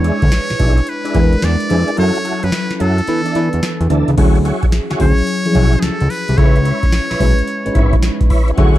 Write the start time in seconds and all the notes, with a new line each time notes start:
Already playing: E2 G#3 D4 E4 B4 C#5
0.04 D4 E4 G#4, closed hi-hat
0.22 D2, kick, closed hi-hat
0.32 snare, closed hi-hat
0.50 B1, snare, closed hi-hat
0.59 B1 D4 E4 G#4, kick, closed hi-hat
0.78 closed hi-hat
0.87 B4, closed hi-hat
1.04 D4 E4 G#4, closed hi-hat
1.15 E2 G#3 D4 E4 A#4, kick, closed hi-hat
1.22 B4
1.33 closed hi-hat
1.42 E2 D5, snare, closed hi-hat
1.60 closed hi-hat
1.69 F2 G#3 D4 E4 G#4 B4, closed hi-hat
1.88 closed hi-hat
1.97 F#2 F#3 C#4 E4 F#4 A4 C#5, closed hi-hat
2.15 closed hi-hat
2.24 E4 F#4 A4, closed hi-hat
2.43 F#2 B4, closed hi-hat
2.52 snare, closed hi-hat
2.70 snare, closed hi-hat
2.76 E4 F#4 B4
2.80 F#2 A4, closed hi-hat
2.98 closed hi-hat
3.07 E3 B3 D4 A4, closed hi-hat
3.25 D4 E4 A4, closed hi-hat
3.35 E3 B3 D4 B4, closed hi-hat
3.53 E2, closed hi-hat
3.63 snare, closed hi-hat
3.81 E2, closed hi-hat
3.90 D2 E3 B3 D4 E4 A4, closed hi-hat
4.08 C#2, closed hi-hat
4.17 D2 F#3 C#4 E4 F#4 G#4 C#5, kick, closed hi-hat, crash
4.36 closed hi-hat
4.45 E4 F#4 G#4 C#5, closed hi-hat
4.63 kick, closed hi-hat
4.72 snare, closed hi-hat
4.90 D2 E4 F#4 G#4 C#5, snare, closed hi-hat
4.99 D2 F#3 C#4 E4 G#4 C#5, kick, open hi-hat
5.18 closed hi-hat
5.27 closed hi-hat
5.45 F3 C#4 E4 G#4, closed hi-hat
5.52 B1 F#3 E4 F#4 G#4 C#5, kick, closed hi-hat
5.73 closed hi-hat
5.79 G#4 A4, snare, closed hi-hat
5.84 C#2
6.00 C#2, closed hi-hat
6.10 B4, open hi-hat
6.28 C2, closed hi-hat
6.37 C#2 G#3 C#4 E4 A4 B4 C#5, kick, closed hi-hat
6.45 B4
6.56 closed hi-hat
6.65 E4 B4 C#5, closed hi-hat
6.83 kick, closed hi-hat
6.92 snare, closed hi-hat
7.10 B1 E4 B4 C#5, snare, closed hi-hat
7.20 B1 G#3 C#4 E4 B4, kick, open hi-hat
7.39 closed hi-hat
7.48 closed hi-hat
7.65 G#1 G#3 C#4 D#4 B4, closed hi-hat
7.73 G#1 E4 B4 C#5, kick, closed hi-hat
7.93 kick, closed hi-hat
8.02 snare, closed hi-hat
8.21 kick, closed hi-hat
8.30 E4 B4 C#5, kick, open hi-hat
8.48 closed hi-hat
8.57 D2 F#3 C#4 E4 F#4 G#4 C#5 E5 F#5 C#6, kick, closed hi-hat